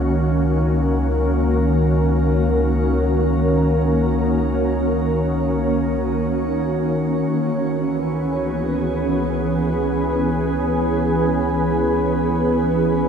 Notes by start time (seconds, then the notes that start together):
Already playing: C#2 D#3 A#3 C#4 F#4 A#4
7.30 C#2 E3
7.58 B3 B4
7.77 G#4